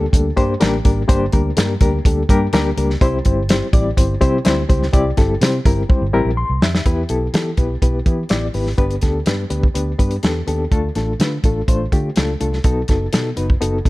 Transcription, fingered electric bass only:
0.13 0.31 D2 loud
0.37 0.54 G2 medium
0.62 0.79 A1 loud
0.85 1.03 G#1 loud
1.09 1.27 G1 loud
1.33 1.51 D2 medium
1.57 1.75 G2 loud
1.81 1.98 D2 loud
2.05 2.23 D2 loud
2.29 2.47 G2 loud
2.53 2.70 D2 medium
2.77 2.95 C#2 loud
3.01 3.19 C2 loud
3.26 3.60 G1 loud
3.73 3.91 A1 loud
3.97 4.15 G1 loud
4.21 4.39 C3 loud
4.46 4.63 D2 loud
4.70 4.87 C#2 loud
4.94 5.11 C2 loud
5.18 5.35 G1 medium
5.41 5.59 C3 loud
5.65 5.83 G1 medium
6.02 6.10 G1 loud
6.13 6.22 A1 medium
6.25 6.43 A#1 medium
6.50 6.58 C2 medium
6.62 6.79 F2 loud
6.85 7.03 E2 loud
7.10 7.27 B1 medium
7.34 7.51 E3 loud
7.57 7.75 B1 medium
7.82 8.00 B1 medium
8.06 8.23 E3 loud
8.30 8.48 A1 medium
8.54 8.72 G#1 medium
8.78 8.96 G1 loud
9.03 9.20 D2 medium
9.27 9.44 G2 loud
9.50 9.68 D2 medium
9.75 9.92 D2 medium
9.99 10.17 G2 medium
10.24 10.41 E2 medium
10.47 10.65 D#2 medium
10.72 10.89 D2 loud
10.96 11.13 A1 medium
11.19 11.37 D3 loud
11.44 11.61 A1 medium
11.68 11.85 A1 medium
11.92 12.09 D3 loud
12.17 12.34 C#2 medium
12.41 12.58 C2 medium
12.64 12.82 B1 loud
12.89 13.06 F#1 loud
13.13 13.31 B2 loud
13.37 13.55 F#1 medium
13.62 13.79 F#1 loud
13.85 13.89 B2 medium

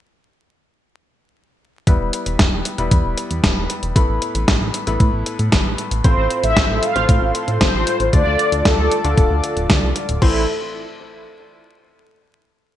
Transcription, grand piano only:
1.87 2.75 G3 medium
1.87 2.75 B3 medium
1.87 2.75 E4 medium
1.87 2.75 B4 medium
2.78 3.93 G3 medium
2.78 3.93 B3 medium
2.78 3.93 E4 medium
2.78 3.93 B4 medium
3.96 4.84 A2 medium
3.96 4.84 A3 medium
3.96 4.84 B3 medium
3.96 4.84 E4 medium
3.96 4.84 B4 medium
4.87 6.01 A2 medium
4.87 6.01 A3 medium
4.87 6.01 B3 medium
4.87 6.01 E4 medium
4.87 6.01 B4 medium
6.04 6.93 A2 medium
6.04 6.93 A3 medium
6.04 6.93 C4 medium
6.04 6.93 F4 medium
6.04 6.93 C5 medium
6.96 8.10 A2 medium
6.96 8.10 A3 medium
6.96 8.10 C4 medium
6.96 8.10 F4 medium
6.96 8.10 C5 medium
8.13 9.01 D3 medium
8.13 9.01 A3 medium
8.13 9.01 D4 medium
8.13 9.01 F4 medium
8.13 9.01 D5 medium
9.04 10.19 D3 medium
9.04 10.19 A3 medium
9.04 10.19 D4 medium
9.04 10.19 F4 medium
9.04 10.19 D5 medium
10.22 10.41 A3 medium
10.22 10.41 C4 medium
10.22 10.41 E4 medium
10.22 10.41 C5 medium

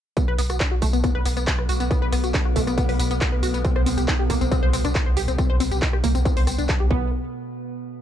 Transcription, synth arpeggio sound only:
0.17 0.23 B3 loud
0.28 0.34 B4 loud
0.38 0.41 B3 loud
0.50 0.56 F#4 medium
0.60 0.67 D4 medium
0.71 0.75 F#4 medium
0.82 0.86 A3 loud
0.93 0.97 B3 loud
1.04 1.08 B3 medium
1.15 1.21 B4 loud
1.25 1.28 B3 loud
1.37 1.39 B3 loud
1.47 1.50 B3 loud
1.59 1.62 B4 medium
1.69 1.73 F#4 loud
1.80 1.84 B3 loud
1.91 1.97 B3 loud
2.02 2.08 B4 loud
2.12 2.15 B3 loud
2.24 2.30 F#4 medium
2.34 2.41 D4 medium
2.45 2.49 F#4 medium
2.56 2.60 A3 loud
2.67 2.71 B3 loud
2.78 2.82 B3 medium
2.89 2.95 B4 loud
2.99 3.02 B3 loud
3.11 3.13 B3 loud
3.21 3.24 B3 loud
3.32 3.36 B4 medium
3.43 3.47 F#4 loud
3.54 3.58 B3 loud
3.65 3.71 C4 loud
3.76 3.82 C5 loud
3.86 3.89 C4 loud
3.97 4.03 G4 medium
4.08 4.14 D#4 medium
4.19 4.23 G4 medium
4.30 4.34 A#3 loud
4.41 4.45 C4 loud
4.52 4.56 C4 medium
4.63 4.69 C5 loud
4.73 4.76 C4 loud
4.84 4.87 D4 loud
4.95 4.98 C4 loud
5.06 5.10 C5 medium
5.17 5.21 G4 loud
5.28 5.32 C4 loud
5.38 5.45 C4 loud
5.50 5.56 C5 loud
5.60 5.63 C4 loud
5.71 5.77 G4 medium
5.82 5.88 D#4 medium
5.93 5.97 G4 medium
6.04 6.08 A#3 loud
6.15 6.19 C4 loud
6.25 6.30 C4 medium
6.37 6.43 C5 loud
6.47 6.51 C4 medium
6.58 6.64 D4 medium
6.69 6.73 D4 medium
6.80 6.86 G4 medium
6.91 7.11 B3 loud

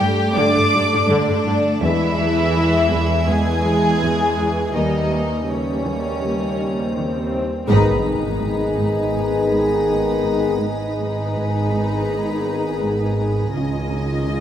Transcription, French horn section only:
0.36 0.62 A3 medium
0.36 0.62 D4 medium
1.83 2.09 G#3 medium
1.83 2.08 B3 medium
3.29 3.55 G#3 medium
3.29 3.55 B3 medium
4.74 5.00 G3 medium
4.74 5.00 A#3 medium
6.22 6.48 G3 soft
6.22 6.48 A#3 soft
7.68 10.56 B3 medium
7.68 10.56 G#4 medium
10.61 13.50 B3 medium
10.61 13.49 G#4 medium
13.55 14.40 C#4 medium
13.55 14.40 F4 medium

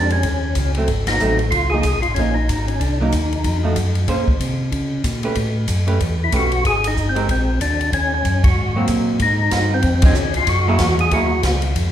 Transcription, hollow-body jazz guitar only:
0.00 0.22 G#3 medium
0.00 0.22 C4 soft
0.00 0.22 G4 medium
0.00 0.23 A#4 medium
0.77 0.88 F#3 soft
0.77 0.88 A3 soft
0.77 0.88 C4 soft
1.20 1.38 F#3 soft
1.20 1.38 A3 medium
1.20 1.39 C4 soft
1.73 1.84 F3 medium
1.73 1.84 A#3 medium
1.73 1.84 D#4 medium
2.17 2.35 F3 medium
2.17 2.35 A#3 medium
2.17 2.35 D#4 medium
3.01 3.12 F#3 medium
3.01 3.12 A#3 medium
3.01 3.12 D#4 medium
3.63 3.75 F3 medium
3.63 3.75 A3 medium
3.63 3.76 D#4 medium
3.63 3.76 F#4 medium
4.08 4.26 A#3 medium
4.08 4.26 C#4 medium
4.08 4.26 G#4 medium
4.08 4.26 C5 medium
5.24 5.35 A3 soft
5.24 5.36 C#4 medium
5.24 5.35 G4 soft
5.24 5.36 B4 medium
5.87 5.99 A3 soft
5.87 5.99 C#4 medium
5.87 5.99 G4 medium
5.87 5.99 B4 medium
6.32 6.50 A3 soft
6.32 6.50 C#4 medium
6.32 6.51 G4 medium
6.32 6.51 B4 soft
7.15 7.27 G#3 medium
7.15 7.27 C4 medium
7.15 7.27 G4 medium
7.15 7.27 A#4 medium
8.76 9.18 F#3 medium
8.76 9.18 A#3 medium
8.76 9.18 C4 medium
10.03 10.15 F3 medium
10.03 10.15 C4 medium
10.03 10.15 D#4 medium
10.68 10.79 F#3 medium
10.68 10.79 A#3 medium
10.68 10.79 E4 medium
10.68 10.80 G#4 medium
11.12 11.29 F#3 soft
11.12 11.30 A#3 medium
11.12 11.30 E4 medium
11.12 11.30 G#4 medium

